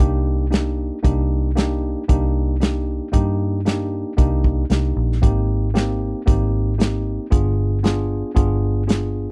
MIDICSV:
0, 0, Header, 1, 4, 480
1, 0, Start_track
1, 0, Key_signature, -3, "minor"
1, 0, Tempo, 523058
1, 958, Time_signature, 4, 2, 24, 8
1, 8551, End_track
2, 0, Start_track
2, 0, Title_t, "Tine electric piano"
2, 0, Program_c, 0, 4
2, 0, Note_on_c, 0, 58, 86
2, 0, Note_on_c, 0, 62, 78
2, 0, Note_on_c, 0, 63, 72
2, 0, Note_on_c, 0, 67, 102
2, 417, Note_off_c, 0, 58, 0
2, 419, Note_off_c, 0, 62, 0
2, 421, Note_off_c, 0, 63, 0
2, 425, Note_off_c, 0, 67, 0
2, 462, Note_on_c, 0, 58, 67
2, 468, Note_on_c, 0, 62, 61
2, 468, Note_on_c, 0, 63, 61
2, 476, Note_on_c, 0, 67, 76
2, 896, Note_off_c, 0, 58, 0
2, 899, Note_off_c, 0, 62, 0
2, 899, Note_off_c, 0, 63, 0
2, 903, Note_off_c, 0, 67, 0
2, 942, Note_on_c, 0, 58, 78
2, 947, Note_on_c, 0, 62, 79
2, 951, Note_on_c, 0, 63, 76
2, 956, Note_on_c, 0, 67, 86
2, 1376, Note_off_c, 0, 58, 0
2, 1378, Note_off_c, 0, 62, 0
2, 1381, Note_off_c, 0, 63, 0
2, 1383, Note_off_c, 0, 67, 0
2, 1428, Note_on_c, 0, 58, 83
2, 1432, Note_on_c, 0, 62, 82
2, 1437, Note_on_c, 0, 63, 77
2, 1439, Note_on_c, 0, 67, 95
2, 1859, Note_off_c, 0, 58, 0
2, 1861, Note_off_c, 0, 62, 0
2, 1863, Note_off_c, 0, 63, 0
2, 1865, Note_off_c, 0, 67, 0
2, 1911, Note_on_c, 0, 58, 88
2, 1913, Note_on_c, 0, 62, 80
2, 1915, Note_on_c, 0, 63, 75
2, 1919, Note_on_c, 0, 67, 93
2, 2340, Note_off_c, 0, 58, 0
2, 2342, Note_off_c, 0, 62, 0
2, 2343, Note_off_c, 0, 63, 0
2, 2345, Note_off_c, 0, 67, 0
2, 2390, Note_on_c, 0, 58, 70
2, 2391, Note_on_c, 0, 62, 59
2, 2394, Note_on_c, 0, 63, 60
2, 2399, Note_on_c, 0, 67, 77
2, 2820, Note_off_c, 0, 58, 0
2, 2820, Note_off_c, 0, 62, 0
2, 2822, Note_off_c, 0, 63, 0
2, 2824, Note_off_c, 0, 67, 0
2, 2862, Note_on_c, 0, 58, 76
2, 2867, Note_on_c, 0, 62, 68
2, 2869, Note_on_c, 0, 63, 81
2, 2874, Note_on_c, 0, 67, 99
2, 3296, Note_off_c, 0, 58, 0
2, 3298, Note_off_c, 0, 62, 0
2, 3299, Note_off_c, 0, 63, 0
2, 3302, Note_off_c, 0, 67, 0
2, 3352, Note_on_c, 0, 58, 75
2, 3352, Note_on_c, 0, 62, 74
2, 3358, Note_on_c, 0, 63, 70
2, 3365, Note_on_c, 0, 67, 86
2, 3781, Note_off_c, 0, 58, 0
2, 3781, Note_off_c, 0, 62, 0
2, 3784, Note_off_c, 0, 63, 0
2, 3787, Note_off_c, 0, 67, 0
2, 3827, Note_on_c, 0, 58, 92
2, 3830, Note_on_c, 0, 62, 77
2, 3834, Note_on_c, 0, 63, 85
2, 3835, Note_on_c, 0, 67, 89
2, 4258, Note_off_c, 0, 58, 0
2, 4260, Note_off_c, 0, 62, 0
2, 4262, Note_off_c, 0, 63, 0
2, 4262, Note_off_c, 0, 67, 0
2, 4312, Note_on_c, 0, 58, 66
2, 4314, Note_on_c, 0, 62, 55
2, 4318, Note_on_c, 0, 63, 62
2, 4324, Note_on_c, 0, 67, 68
2, 4741, Note_off_c, 0, 58, 0
2, 4742, Note_off_c, 0, 62, 0
2, 4744, Note_off_c, 0, 63, 0
2, 4747, Note_off_c, 0, 67, 0
2, 4786, Note_on_c, 0, 58, 78
2, 4791, Note_on_c, 0, 60, 72
2, 4795, Note_on_c, 0, 63, 74
2, 4796, Note_on_c, 0, 67, 94
2, 5218, Note_off_c, 0, 58, 0
2, 5220, Note_off_c, 0, 60, 0
2, 5222, Note_off_c, 0, 63, 0
2, 5223, Note_off_c, 0, 67, 0
2, 5267, Note_on_c, 0, 58, 82
2, 5267, Note_on_c, 0, 60, 80
2, 5272, Note_on_c, 0, 63, 66
2, 5277, Note_on_c, 0, 67, 92
2, 5698, Note_off_c, 0, 58, 0
2, 5698, Note_off_c, 0, 60, 0
2, 5701, Note_off_c, 0, 63, 0
2, 5703, Note_off_c, 0, 67, 0
2, 5742, Note_on_c, 0, 58, 78
2, 5751, Note_on_c, 0, 60, 80
2, 5752, Note_on_c, 0, 63, 73
2, 5754, Note_on_c, 0, 67, 95
2, 6176, Note_off_c, 0, 58, 0
2, 6180, Note_off_c, 0, 60, 0
2, 6181, Note_off_c, 0, 63, 0
2, 6182, Note_off_c, 0, 67, 0
2, 6224, Note_on_c, 0, 58, 64
2, 6224, Note_on_c, 0, 60, 59
2, 6230, Note_on_c, 0, 63, 66
2, 6233, Note_on_c, 0, 67, 74
2, 6657, Note_off_c, 0, 58, 0
2, 6657, Note_off_c, 0, 60, 0
2, 6660, Note_off_c, 0, 63, 0
2, 6661, Note_off_c, 0, 67, 0
2, 6703, Note_on_c, 0, 59, 83
2, 6706, Note_on_c, 0, 62, 70
2, 6708, Note_on_c, 0, 65, 75
2, 6712, Note_on_c, 0, 68, 89
2, 7136, Note_off_c, 0, 59, 0
2, 7138, Note_off_c, 0, 62, 0
2, 7139, Note_off_c, 0, 65, 0
2, 7141, Note_off_c, 0, 68, 0
2, 7188, Note_on_c, 0, 59, 83
2, 7193, Note_on_c, 0, 62, 81
2, 7195, Note_on_c, 0, 65, 83
2, 7198, Note_on_c, 0, 68, 89
2, 7619, Note_off_c, 0, 59, 0
2, 7621, Note_off_c, 0, 62, 0
2, 7622, Note_off_c, 0, 65, 0
2, 7624, Note_off_c, 0, 68, 0
2, 7660, Note_on_c, 0, 59, 91
2, 7663, Note_on_c, 0, 62, 81
2, 7667, Note_on_c, 0, 65, 80
2, 7669, Note_on_c, 0, 68, 90
2, 8095, Note_off_c, 0, 59, 0
2, 8096, Note_off_c, 0, 62, 0
2, 8098, Note_off_c, 0, 65, 0
2, 8099, Note_off_c, 0, 68, 0
2, 8139, Note_on_c, 0, 59, 70
2, 8144, Note_on_c, 0, 62, 60
2, 8148, Note_on_c, 0, 65, 64
2, 8152, Note_on_c, 0, 68, 72
2, 8551, Note_off_c, 0, 59, 0
2, 8551, Note_off_c, 0, 62, 0
2, 8551, Note_off_c, 0, 65, 0
2, 8551, Note_off_c, 0, 68, 0
2, 8551, End_track
3, 0, Start_track
3, 0, Title_t, "Fingered electric bass"
3, 0, Program_c, 1, 33
3, 0, Note_on_c, 1, 36, 88
3, 822, Note_off_c, 1, 36, 0
3, 958, Note_on_c, 1, 36, 103
3, 1782, Note_off_c, 1, 36, 0
3, 1920, Note_on_c, 1, 36, 91
3, 2743, Note_off_c, 1, 36, 0
3, 2877, Note_on_c, 1, 43, 110
3, 3701, Note_off_c, 1, 43, 0
3, 3839, Note_on_c, 1, 36, 101
3, 4250, Note_off_c, 1, 36, 0
3, 4314, Note_on_c, 1, 36, 68
3, 4531, Note_off_c, 1, 36, 0
3, 4555, Note_on_c, 1, 34, 90
3, 4772, Note_off_c, 1, 34, 0
3, 4799, Note_on_c, 1, 32, 103
3, 5622, Note_off_c, 1, 32, 0
3, 5761, Note_on_c, 1, 32, 104
3, 6583, Note_off_c, 1, 32, 0
3, 6721, Note_on_c, 1, 31, 111
3, 7543, Note_off_c, 1, 31, 0
3, 7678, Note_on_c, 1, 31, 95
3, 8502, Note_off_c, 1, 31, 0
3, 8551, End_track
4, 0, Start_track
4, 0, Title_t, "Drums"
4, 0, Note_on_c, 9, 36, 101
4, 0, Note_on_c, 9, 42, 63
4, 88, Note_off_c, 9, 42, 0
4, 89, Note_off_c, 9, 36, 0
4, 480, Note_on_c, 9, 42, 53
4, 494, Note_on_c, 9, 38, 105
4, 572, Note_off_c, 9, 42, 0
4, 586, Note_off_c, 9, 38, 0
4, 959, Note_on_c, 9, 36, 107
4, 960, Note_on_c, 9, 42, 69
4, 1050, Note_off_c, 9, 36, 0
4, 1052, Note_off_c, 9, 42, 0
4, 1440, Note_on_c, 9, 42, 58
4, 1454, Note_on_c, 9, 38, 105
4, 1532, Note_off_c, 9, 42, 0
4, 1546, Note_off_c, 9, 38, 0
4, 1920, Note_on_c, 9, 36, 101
4, 1920, Note_on_c, 9, 42, 62
4, 2012, Note_off_c, 9, 36, 0
4, 2012, Note_off_c, 9, 42, 0
4, 2400, Note_on_c, 9, 42, 59
4, 2413, Note_on_c, 9, 38, 98
4, 2492, Note_off_c, 9, 42, 0
4, 2505, Note_off_c, 9, 38, 0
4, 2875, Note_on_c, 9, 42, 67
4, 2878, Note_on_c, 9, 36, 104
4, 2967, Note_off_c, 9, 42, 0
4, 2970, Note_off_c, 9, 36, 0
4, 3360, Note_on_c, 9, 42, 58
4, 3373, Note_on_c, 9, 38, 94
4, 3451, Note_off_c, 9, 42, 0
4, 3465, Note_off_c, 9, 38, 0
4, 3838, Note_on_c, 9, 36, 110
4, 3839, Note_on_c, 9, 42, 57
4, 3930, Note_off_c, 9, 36, 0
4, 3931, Note_off_c, 9, 42, 0
4, 4077, Note_on_c, 9, 36, 72
4, 4169, Note_off_c, 9, 36, 0
4, 4313, Note_on_c, 9, 42, 56
4, 4327, Note_on_c, 9, 38, 101
4, 4405, Note_off_c, 9, 42, 0
4, 4419, Note_off_c, 9, 38, 0
4, 4701, Note_on_c, 9, 38, 28
4, 4792, Note_off_c, 9, 38, 0
4, 4799, Note_on_c, 9, 36, 109
4, 4802, Note_on_c, 9, 42, 62
4, 4891, Note_off_c, 9, 36, 0
4, 4893, Note_off_c, 9, 42, 0
4, 5280, Note_on_c, 9, 42, 52
4, 5294, Note_on_c, 9, 38, 104
4, 5372, Note_off_c, 9, 42, 0
4, 5386, Note_off_c, 9, 38, 0
4, 5759, Note_on_c, 9, 36, 116
4, 5761, Note_on_c, 9, 42, 60
4, 5851, Note_off_c, 9, 36, 0
4, 5853, Note_off_c, 9, 42, 0
4, 6240, Note_on_c, 9, 42, 55
4, 6254, Note_on_c, 9, 38, 108
4, 6332, Note_off_c, 9, 42, 0
4, 6345, Note_off_c, 9, 38, 0
4, 6718, Note_on_c, 9, 36, 114
4, 6720, Note_on_c, 9, 42, 67
4, 6810, Note_off_c, 9, 36, 0
4, 6812, Note_off_c, 9, 42, 0
4, 7195, Note_on_c, 9, 42, 58
4, 7209, Note_on_c, 9, 38, 106
4, 7287, Note_off_c, 9, 42, 0
4, 7301, Note_off_c, 9, 38, 0
4, 7675, Note_on_c, 9, 42, 65
4, 7676, Note_on_c, 9, 36, 103
4, 7767, Note_off_c, 9, 42, 0
4, 7768, Note_off_c, 9, 36, 0
4, 8158, Note_on_c, 9, 42, 63
4, 8171, Note_on_c, 9, 38, 100
4, 8249, Note_off_c, 9, 42, 0
4, 8263, Note_off_c, 9, 38, 0
4, 8551, End_track
0, 0, End_of_file